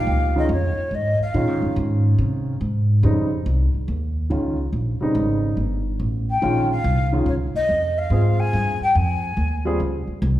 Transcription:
0.00 0.30 F3 medium
0.00 0.30 A#3 medium
0.00 0.30 D#4 medium
0.00 0.31 G4 medium
0.00 0.34 F5 medium
0.07 0.48 C#2 medium
0.36 0.48 D#3 medium
0.36 0.49 G#3 medium
0.36 0.49 C#4 medium
0.36 0.49 F4 medium
0.36 0.50 D#5 medium
0.49 0.75 F2 medium
0.49 0.96 C#5 medium
0.77 muted upright bass stroke soft
0.91 1.17 G#2 medium
0.91 1.21 D#5 medium
1.19 1.73 F5 medium
1.19 muted upright bass stroke soft
1.34 1.48 A#2 medium
1.34 2.52 D#3 medium
1.34 2.53 G#3 soft
1.34 2.53 C#4 medium
1.34 2.53 F4 medium
1.48 1.62 G#2 soft
1.62 1.75 F2 medium
1.76 2.17 G#2 medium
2.18 2.59 C3 medium
2.61 3.02 G#2 medium
3.03 3.44 F2 medium
3.03 3.28 C#3 medium
3.03 3.28 G3 medium
3.03 3.29 C4 medium
3.03 3.29 D#4 medium
3.46 3.72 C2 medium
3.74 muted upright bass stroke soft
3.88 4.29 D#2 medium
4.30 4.71 C#2 medium
4.30 4.55 D#3 medium
4.30 4.55 G#3 soft
4.30 4.56 C#4 soft
4.30 4.56 F4 medium
4.73 4.98 A#1 medium
5.01 5.54 C#3 medium
5.01 5.54 G3 soft
5.01 5.55 C4 soft
5.01 5.55 D#4 medium
5.01 muted upright bass stroke soft
5.15 5.56 G#1 medium
5.57 5.98 G1 medium
6.00 6.40 A1 medium
6.30 6.68 G5 medium
6.42 6.83 A#1 medium
6.42 6.67 D#3 medium
6.42 6.67 G#3 medium
6.42 6.67 C#4 medium
6.42 6.68 F4 medium
6.71 7.09 F5 medium
6.84 7.25 C2 medium
7.12 7.25 D#3 medium
7.12 7.25 G#3 medium
7.12 7.25 C#4 medium
7.12 7.26 F4 medium
7.26 7.52 C#2 medium
7.26 7.33 C#5 medium
7.54 7.99 D#5 loud
7.54 muted upright bass stroke soft
7.69 8.10 F2 medium
7.98 8.41 F5 medium
8.10 8.51 G#2 medium
8.10 8.75 G#3 medium
8.10 8.75 C4 medium
8.10 8.76 F4 medium
8.10 8.76 G#4 medium
8.39 8.81 G#5 loud
8.53 8.79 G2 medium
8.80 8.97 G5 medium
8.80 muted upright bass stroke soft
8.95 9.36 F2 medium
8.95 9.66 G#5 medium
9.37 9.78 D#2 medium
9.65 9.78 G3 medium
9.65 9.78 C4 medium
9.65 9.79 F4 medium
9.65 9.79 G#4 medium
9.80 10.06 C#2 medium
10.07 muted upright bass stroke soft
10.22 10.40 C2 medium

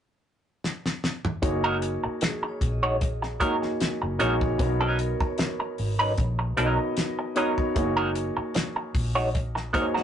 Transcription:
0.64 snare medium
0.86 snare medium
1.04 snare medium
1.25 mid tom medium
1.42 1.97 F#1 medium
1.42 2.70 A#3 medium
1.42 2.70 D#4 medium
1.42 2.71 F#4 medium
1.42 2.71 G#4 medium
1.42 2.71 C#5 medium
1.42 muted clean electric guitar stroke soft
1.42 kick medium
1.42 closed hi-hat medium
1.64 1.77 G#3 soft
1.64 1.77 D#4 medium
1.64 1.76 F#4 medium
1.64 1.76 A#4 medium
1.82 muted clean electric guitar stroke soft
1.82 closed hi-hat medium
2.04 muted clean electric guitar stroke soft
2.04 muted fingered electric bass stroke soft
2.21 3.32 G#4 medium
2.21 muted clean electric guitar stroke soft
2.21 snare loud
2.21 closed hi-hat medium
2.43 muted clean electric guitar stroke soft
2.48 3.56 C#5 soft
2.61 3.41 A#1 medium
2.61 kick medium
2.61 closed hi-hat medium
2.72 3.77 D#5 soft
2.83 2.96 G#3 soft
2.83 2.95 D#4 medium
2.83 2.95 F#4 medium
2.83 2.95 C#5 medium
3.01 muted clean electric guitar stroke soft
3.01 kick medium
3.01 closed hi-hat medium
3.22 muted clean electric guitar stroke soft
3.22 snare soft
3.40 3.76 G#1 medium
3.40 3.55 G#3 medium
3.40 4.05 A#3 medium
3.40 3.55 D#4 medium
3.40 4.05 D#4 medium
3.40 3.55 F#4 medium
3.40 4.06 F#4 medium
3.40 4.06 G#4 medium
3.40 3.55 A#4 medium
3.40 4.06 C#5 medium
3.40 kick medium
3.40 closed hi-hat medium
3.62 muted clean electric guitar stroke soft
3.62 snare soft
3.81 snare medium
3.81 closed hi-hat medium
4.02 4.19 F#1 medium
4.02 muted clean electric guitar stroke soft
4.19 4.56 A#1 medium
4.19 4.34 G#3 medium
4.19 4.52 A#3 medium
4.19 4.52 D#4 medium
4.19 4.34 D#4 medium
4.19 4.52 F#4 medium
4.19 4.35 F#4 medium
4.19 4.52 G#4 medium
4.19 4.35 A#4 medium
4.19 4.53 C#5 medium
4.19 closed hi-hat medium
4.41 muted clean electric guitar stroke soft
4.41 kick medium
4.58 5.14 B1 medium
4.58 5.87 B3 medium
4.58 4.66 C#4 medium
4.58 5.87 F#4 medium
4.58 5.87 A#4 medium
4.58 5.88 C#5 medium
4.58 muted clean electric guitar stroke soft
4.58 kick medium
4.58 closed hi-hat medium
4.65 5.90 D#4 medium
4.81 4.98 F#3 medium
4.81 4.98 C#4 medium
4.81 4.98 D#4 medium
4.81 4.99 A#4 medium
4.99 6.10 A#4 medium
4.99 muted clean electric guitar stroke soft
4.99 closed hi-hat medium
5.20 muted clean electric guitar stroke soft
5.20 kick medium
5.25 6.33 C#5 soft
5.38 muted clean electric guitar stroke soft
5.38 snare loud
5.38 closed hi-hat medium
5.60 muted clean electric guitar stroke soft
5.78 6.14 G#1 medium
5.78 open hi-hat medium
5.99 6.12 F#3 medium
5.99 6.12 C#4 medium
5.99 6.12 D#4 medium
5.99 6.12 B4 medium
6.18 6.53 A#1 medium
6.18 muted clean electric guitar stroke soft
6.18 kick medium
6.18 closed hi-hat medium
6.39 muted clean electric guitar stroke soft
6.57 6.77 B1 medium
6.57 6.79 F#3 medium
6.57 7.22 B3 medium
6.57 6.78 C#4 medium
6.57 7.22 D#4 medium
6.57 6.78 D#4 medium
6.57 7.22 F#4 medium
6.57 7.22 A#4 medium
6.57 6.78 A#4 medium
6.57 6.65 C#5 medium
6.57 closed hi-hat medium
6.65 7.26 D#5 medium
6.79 muted clean electric guitar stroke soft
6.97 snare medium
6.97 closed hi-hat medium
7.19 muted clean electric guitar stroke soft
7.35 7.51 F#3 medium
7.35 7.68 B3 medium
7.35 7.51 C#4 medium
7.35 7.69 D#4 medium
7.35 7.52 D#4 medium
7.35 7.69 F#4 medium
7.35 7.69 A#4 medium
7.35 7.52 A#4 medium
7.35 7.69 C#5 medium
7.35 closed hi-hat medium
7.58 muted clean electric guitar stroke soft
7.58 kick medium
7.75 8.30 F#1 medium
7.75 9.03 A#3 medium
7.75 9.04 D#4 medium
7.75 9.04 F#4 medium
7.75 9.04 G#4 medium
7.75 9.05 C#5 medium
7.75 muted clean electric guitar stroke soft
7.75 kick medium
7.75 closed hi-hat medium
7.97 8.10 G#3 medium
7.97 8.10 D#4 medium
7.97 8.10 F#4 medium
7.97 8.09 A#4 medium
8.15 muted clean electric guitar stroke soft
8.15 closed hi-hat medium
8.37 muted clean electric guitar stroke soft
8.37 muted fingered electric bass stroke soft
8.55 muted clean electric guitar stroke soft
8.55 snare loud
8.55 closed hi-hat medium
8.76 muted clean electric guitar stroke soft
8.95 9.75 A#1 medium
8.95 kick medium
8.95 open hi-hat medium
9.15 9.29 G#3 medium
9.15 9.29 D#4 medium
9.15 9.28 F#4 medium
9.15 9.28 C#5 medium
9.34 muted clean electric guitar stroke soft
9.34 kick medium
9.34 closed hi-hat medium
9.55 muted clean electric guitar stroke soft
9.55 snare soft
9.73 10.03 G#1 medium
9.73 9.85 G#3 medium
9.73 10.03 A#3 medium
9.73 10.03 D#4 medium
9.73 9.85 D#4 medium
9.73 10.03 F#4 medium
9.73 9.86 F#4 medium
9.73 10.03 G#4 medium
9.73 9.86 A#4 medium
9.73 9.82 C5 medium
9.73 kick medium
9.73 closed hi-hat medium
9.81 10.03 C#5 medium
9.94 10.03 G#3 soft
9.94 10.03 D#4 soft
9.94 10.03 F#4 soft
9.94 10.03 A#4 medium
9.94 snare soft

